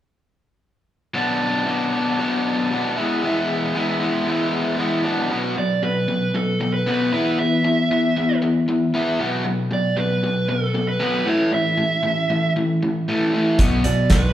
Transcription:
1.14 1.65 B2 medium
1.14 1.67 F#3 medium
1.14 1.68 B3 medium
1.14 1.68 D4 medium
1.66 2.18 B2 medium
1.66 1.95 F#3 medium
1.66 1.93 B3 medium
1.66 1.91 D4 medium
1.92 2.19 F#3 soft
1.92 2.20 B3 soft
1.92 2.20 D4 medium
2.19 2.69 B2 medium
2.19 2.71 F#3 medium
2.19 2.72 B3 medium
2.19 2.72 D4 medium
2.70 2.95 B2 medium
2.70 2.98 F#3 medium
2.70 2.97 B3 medium
2.70 2.96 D4 medium
2.96 3.21 E3 medium
2.96 3.22 G#3 medium
2.96 3.23 B3 medium
2.96 3.24 E4 medium
3.22 3.73 E3 medium
3.22 3.74 G#3 medium
3.22 3.75 B3 medium
3.22 3.76 E4 medium
3.74 4.25 E3 medium
3.74 4.02 G#3 medium
3.74 4.01 B3 medium
3.74 3.99 E4 medium
4.00 4.26 G#3 medium
4.00 4.27 B3 medium
4.00 4.28 E4 medium
4.26 4.76 E3 medium
4.26 4.78 G#3 medium
4.26 4.79 B3 loud
4.26 4.79 E4 medium
4.78 5.03 E3 medium
4.78 5.03 G#3 medium
4.78 5.04 B3 medium
4.78 5.03 E4 medium
5.04 5.29 B2 medium
5.04 5.29 F#3 medium
5.04 5.29 B3 medium
5.04 5.29 D4 medium
5.30 5.55 B2 medium
5.30 5.55 F#3 medium
5.30 5.55 B3 medium
5.56 5.80 B2 medium
5.56 5.80 F#3 medium
5.56 5.82 D5 medium
5.83 6.06 B2 medium
5.83 6.06 F#3 medium
5.83 6.37 B4 medium
6.08 6.32 B2 medium
6.08 6.32 F#3 medium
6.34 6.58 B2 medium
6.34 6.58 F#3 medium
6.34 6.71 A4 medium
6.60 6.84 B2 medium
6.60 6.84 F#3 medium
6.74 7.12 B4 medium
6.86 7.11 B2 medium
6.86 7.11 F#3 medium
6.86 7.11 B3 medium
7.12 7.36 E3 medium
7.12 7.37 B3 medium
7.12 7.37 E4 medium
7.12 7.37 B4 medium
7.39 7.62 E3 medium
7.39 7.62 B3 medium
7.39 8.38 E5 medium
7.64 7.88 E3 medium
7.64 7.88 B3 medium
7.91 8.14 E3 medium
7.91 8.14 B3 medium
8.16 8.40 E3 medium
8.16 8.40 B3 medium
8.42 8.65 E3 medium
8.42 8.65 B3 medium
8.68 8.91 E3 medium
8.68 8.92 B3 medium
8.94 9.18 E3 medium
8.94 9.18 B3 medium
8.94 9.19 E4 medium
9.20 9.43 B2 medium
9.20 9.44 F#3 medium
9.20 9.44 B3 medium
9.45 9.68 B2 medium
9.45 9.69 F#3 medium
9.71 9.94 B2 medium
9.71 9.95 F#3 medium
9.71 9.99 D5 medium
9.96 10.20 B2 medium
9.96 10.21 F#3 medium
9.96 10.49 B4 medium
10.23 10.46 B2 medium
10.23 10.47 F#3 medium
10.48 10.72 B2 medium
10.48 10.72 F#3 medium
10.48 10.88 A4 medium
10.74 10.98 B2 medium
10.74 10.98 F#3 medium
10.88 11.28 B4 medium
10.99 11.24 B2 medium
10.99 11.25 F#3 medium
10.99 11.25 B3 medium
11.25 11.50 A2 medium
11.25 11.51 E3 medium
11.25 11.51 A3 medium
11.25 11.53 C#5 medium
11.52 11.75 A2 medium
11.52 11.76 E3 medium
11.52 12.53 E5 medium
11.78 12.01 A2 medium
11.78 12.01 E3 medium
12.03 12.27 A2 medium
12.03 12.27 E3 medium
12.30 12.53 A2 medium
12.30 12.53 E3 medium
12.56 12.79 A2 medium
12.56 12.80 E3 medium
12.83 13.05 A2 medium
12.83 13.05 E3 medium
13.08 13.32 A2 medium
13.08 13.32 E3 medium
13.08 13.33 A3 medium
13.34 13.58 A2 medium
13.34 13.58 E3 medium
13.34 13.58 A3 medium
13.59 13.83 B1 medium
13.59 13.83 B2 medium
13.59 13.84 F#3 medium
13.59 13.84 B3 medium
13.59 kick loud
13.59 closed hi-hat medium
13.84 14.08 B2 medium
13.84 14.09 B2 medium
13.84 14.09 F#3 medium
13.84 14.11 D5 medium
13.84 closed hi-hat medium
14.10 14.33 B1 medium
14.10 14.33 B2 medium
14.10 14.33 F#3 medium
14.10 14.33 B4 medium
14.10 kick loud
14.10 snare loud
14.10 closed hi-hat medium

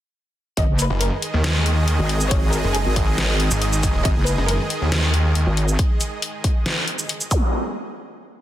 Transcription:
0.57 0.67 G#1 medium
0.57 7.49 D#3 medium
0.57 7.49 G#3 medium
0.57 7.49 G#4 medium
0.57 7.49 D#5 loud
0.57 0.73 D#5 loud
0.57 kick loud
0.57 closed hi-hat medium
0.69 0.88 F#1 loud
0.79 0.95 B4 medium
0.79 closed hi-hat medium
0.79 shaker medium
0.90 1.10 F#1 loud
1.01 1.24 A#4 loud
1.01 closed hi-hat medium
1.22 closed hi-hat medium
1.34 1.97 D#2 loud
1.44 snare loud
1.44 closed hi-hat medium
1.66 closed hi-hat medium
1.88 closed hi-hat medium
1.99 2.62 G#1 loud
2.09 closed hi-hat medium
2.21 shaker medium
2.31 2.47 C#5 loud
2.31 kick loud
2.31 closed hi-hat medium
2.53 2.69 A#4 medium
2.53 closed hi-hat medium
2.53 shaker medium
2.64 2.84 F#1 loud
2.75 2.98 G#4 loud
2.75 closed hi-hat medium
2.86 3.49 G#1 medium
2.96 kick medium
2.96 closed hi-hat medium
3.18 snare loud
3.18 closed hi-hat medium
3.40 closed hi-hat medium
3.51 3.93 G#1 loud
3.51 shaker medium
3.62 closed hi-hat medium
3.73 shaker medium
3.83 kick medium
3.83 closed hi-hat medium
3.83 shaker medium
3.95 4.03 D#1 loud
4.05 4.15 G#1 loud
4.05 4.21 D#5 loud
4.05 kick loud
4.05 closed hi-hat medium
4.16 4.36 F#1 loud
4.27 4.43 B4 medium
4.27 closed hi-hat medium
4.27 shaker medium
4.38 4.58 F#1 loud
4.48 4.72 A#4 loud
4.48 closed hi-hat medium
4.70 closed hi-hat medium
4.82 5.45 D#2 loud
4.92 snare loud
4.92 closed hi-hat medium
5.14 closed hi-hat medium
5.35 closed hi-hat medium
5.47 5.77 G#1 loud
5.57 closed hi-hat medium
5.68 shaker medium
5.79 kick loud
5.79 closed hi-hat medium
6.01 closed hi-hat medium
6.01 shaker medium
6.22 closed hi-hat medium
6.44 kick medium
6.44 closed hi-hat medium
6.66 snare loud
6.66 closed hi-hat medium
6.88 closed hi-hat medium
6.99 shaker medium
7.09 closed hi-hat medium
7.21 shaker medium
7.31 kick medium
7.31 closed hi-hat medium
7.31 zap medium
7.31 shaker medium

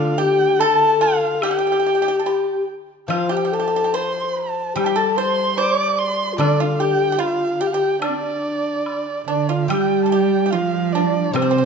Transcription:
0.00 2.24 D3 medium
0.00 0.16 D4 medium
0.00 0.18 D4 soft
0.00 0.18 F4 medium
0.00 0.39 F4 soft
0.00 0.59 A4 soft
0.00 0.20 F5 medium
0.18 0.56 G4 medium
0.18 0.61 G4 medium
0.18 0.61 G5 medium
0.59 1.35 A4 medium
0.59 0.98 A4 medium
0.59 1.03 A5 loud
0.59 low woodblock soft
1.01 1.39 F4 medium
1.01 1.45 F5 medium
1.35 1.43 A4 medium
1.42 2.24 G4 medium
1.42 1.49 G4 medium
1.42 2.68 G5 medium
1.42 high woodblock medium
1.51 1.57 G4 soft
1.58 1.65 G4 medium
1.67 1.71 G4 soft
1.72 1.78 G4 soft
1.80 1.85 G4 soft
1.86 1.93 G4 soft
1.95 2.01 G4 soft
2.02 2.07 G4 medium
2.08 2.15 G4 medium
2.19 2.26 A4 soft
2.24 2.64 G4 medium
2.24 2.65 G4 medium
2.24 low woodblock soft
3.08 5.57 F3 soft
3.08 3.33 F4 medium
3.08 3.29 F4 medium
3.08 3.33 F5 medium
3.08 high woodblock medium
3.29 3.35 G4 medium
3.29 3.53 G4 medium
3.29 3.55 G5 medium
3.37 3.43 G4 soft
3.45 3.52 G4 medium
3.52 3.58 G4 soft
3.52 3.97 A4 medium
3.52 3.97 A5 medium
3.60 3.66 G4 medium
3.68 3.75 G4 soft
3.76 3.83 G4 medium
3.84 3.90 G4 soft
3.94 4.46 C5 medium
3.94 4.75 C5 medium
3.94 4.39 C6 medium
3.94 low woodblock soft
4.37 4.77 A5 medium
4.46 4.72 A4 medium
4.75 7.19 G3 medium
4.75 4.85 G4 medium
4.75 4.98 G4 medium
4.75 4.86 G5 medium
4.75 high woodblock medium
4.84 4.96 G4 medium
4.84 4.99 G5 medium
4.84 4.89 A5 medium
4.96 5.15 A4 medium
4.96 5.19 A4 medium
4.96 5.18 A5 medium
5.16 5.57 C5 medium
5.16 5.55 C5 medium
5.16 5.59 C6 medium
5.57 5.81 C5 medium
5.57 6.34 D5 medium
5.57 6.00 D6 medium
5.57 low woodblock soft
5.81 6.35 D5 medium
5.99 6.39 C6 medium
6.33 6.42 F4 medium
6.38 8.85 D3 medium
6.38 6.58 D4 medium
6.38 6.81 D4 medium
6.38 6.62 D5 medium
6.38 high woodblock medium
6.60 6.78 F4 medium
6.60 6.81 F5 medium
6.80 7.20 G4 medium
6.80 7.11 G4 medium
6.80 7.22 G5 loud
7.12 7.19 G4 medium
7.19 7.57 F4 medium
7.19 7.63 F4 medium
7.19 7.62 F5 medium
7.19 low woodblock soft
7.61 7.73 G4 medium
7.61 7.72 G4 medium
7.61 7.69 G5 medium
7.67 7.75 F5 medium
7.73 7.99 G4 medium
7.73 8.00 G4 medium
7.73 8.01 G5 medium
7.99 8.10 D4 medium
7.99 9.24 D4 medium
7.99 high woodblock medium
8.03 9.25 D5 medium
8.08 8.17 C4 medium
8.15 9.06 D4 medium
8.86 high woodblock soft
8.86 low woodblock soft
9.26 9.70 D3 medium
9.26 9.47 D4 medium
9.26 9.51 D4 medium
9.26 9.51 D5 medium
9.49 9.69 F4 medium
9.49 9.71 F5 medium
9.68 11.65 G3 medium
9.68 10.54 G3 medium
9.68 10.54 G4 medium
9.68 10.03 G4 medium
9.68 10.03 G5 medium
9.68 high woodblock medium
10.04 10.12 A4 soft
10.04 10.12 A5 medium
10.10 10.44 G4 medium
10.10 10.52 G5 medium
10.46 10.53 G4 medium
10.51 11.35 F3 medium
10.51 10.91 F4 medium
10.51 10.97 F4 medium
10.51 10.94 F5 medium
10.93 11.33 D4 medium
10.93 11.37 D4 medium
10.93 11.35 D5 medium
11.33 11.65 C3 medium
11.33 11.41 C4 medium
11.33 11.65 C5 medium
11.33 high woodblock medium
11.42 11.49 C4 medium
11.51 11.57 C4 medium
11.58 11.63 C4 soft

